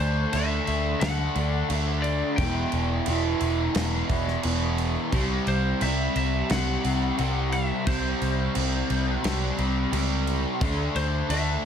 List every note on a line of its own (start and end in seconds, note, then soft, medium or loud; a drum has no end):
0.00 0.25 D2 medium
0.00 0.31 D3 loud
0.00 0.32 A3 loud
0.00 0.35 D4 loud
0.00 0.34 C5 medium
0.32 0.59 D2 medium
0.32 0.99 D3 medium
0.32 1.01 A3 medium
0.32 1.02 D4 medium
0.32 0.64 E5 medium
0.32 crash medium
0.65 0.93 D2 medium
0.65 0.98 E5 medium
0.65 crash medium
1.00 1.27 D2 loud
1.00 1.68 D3 loud
1.00 1.37 A3 medium
1.00 1.34 D4 loud
1.00 1.74 F#5 loud
1.00 snare loud
1.00 crash medium
1.35 1.62 D2 medium
1.35 1.69 A3 medium
1.35 1.70 D4 medium
1.35 crash medium
1.69 2.21 D2 loud
1.69 2.36 D3 medium
1.69 2.36 A3 medium
1.69 2.37 D4 medium
1.69 crash medium
1.74 2.06 E5 loud
2.02 2.38 D5 medium
2.02 crash medium
2.36 2.64 E1 loud
2.36 3.05 E2 loud
2.36 3.06 B2 loud
2.36 3.08 E3 medium
2.36 3.70 G5 loud
2.36 kick loud
2.36 crash medium
2.72 2.99 E1 medium
2.72 crash medium
3.06 3.33 E1 loud
3.06 3.73 E2 medium
3.06 3.74 B2 medium
3.06 3.76 E3 medium
3.06 crash medium
3.41 3.67 E1 loud
3.41 crash medium
3.74 4.01 E1 loud
3.74 4.41 E2 medium
3.74 4.10 B2 medium
3.74 4.08 E3 loud
3.74 snare loud
3.74 crash medium
4.08 4.35 E1 medium
4.08 4.43 B2 medium
4.08 4.45 E3 medium
4.08 kick medium
4.08 crash medium
4.28 snare soft
4.43 4.96 E1 medium
4.43 5.10 E2 medium
4.43 5.10 B2 medium
4.43 5.12 E3 medium
4.43 crash medium
4.78 crash medium
5.11 5.38 C2 loud
5.11 5.80 C3 loud
5.11 5.81 G3 loud
5.11 5.83 C4 loud
5.11 kick loud
5.11 crash medium
5.47 5.73 C2 medium
5.47 5.82 C5 medium
5.47 crash medium
5.81 6.07 C2 medium
5.81 6.48 C3 medium
5.81 6.49 G3 medium
5.81 6.51 C4 medium
5.81 6.15 E5 loud
5.81 crash medium
6.16 6.41 C2 medium
6.16 6.51 E5 loud
6.16 crash medium
6.49 6.76 C2 medium
6.49 7.16 C3 medium
6.49 6.83 G3 loud
6.49 6.82 C4 loud
6.49 7.53 F#5 loud
6.49 snare loud
6.49 crash medium
6.82 7.10 C2 medium
6.82 7.17 G3 medium
6.82 7.19 C4 medium
6.82 crash medium
7.18 7.70 C2 loud
7.18 7.85 C3 medium
7.18 7.85 G3 medium
7.18 7.87 C4 medium
7.18 crash medium
7.52 7.88 E5 medium
7.52 crash medium
7.86 8.12 C2 loud
7.86 8.53 C3 medium
7.86 8.55 G3 medium
7.86 8.57 C4 loud
7.86 9.20 C5 medium
7.86 kick loud
7.86 crash medium
8.22 8.47 C2 medium
8.22 crash medium
8.54 8.82 C2 medium
8.54 9.21 C3 medium
8.54 9.23 G3 medium
8.54 9.24 C4 medium
8.54 crash medium
8.90 9.16 C2 medium
8.90 crash medium
9.23 9.50 C2 loud
9.23 9.91 C3 medium
9.23 9.58 G3 loud
9.23 9.56 C4 loud
9.23 snare loud
9.23 crash medium
9.57 9.84 C2 medium
9.57 9.92 G3 medium
9.57 9.93 C4 medium
9.57 crash medium
9.92 10.44 C#2 loud
9.92 10.59 C3 medium
9.92 10.59 G3 medium
9.92 10.60 C4 medium
9.92 crash medium
10.27 crash medium
10.61 10.87 D2 loud
10.61 11.28 D3 medium
10.61 11.29 A3 loud
10.61 11.30 D4 medium
10.61 kick loud
10.61 crash medium
10.95 11.21 D2 medium
10.95 11.31 C5 medium
10.95 crash medium
11.29 11.55 D2 medium
11.29 11.65 D3 medium
11.29 11.65 A3 medium
11.29 11.65 D4 medium
11.29 11.65 E5 loud
11.29 crash medium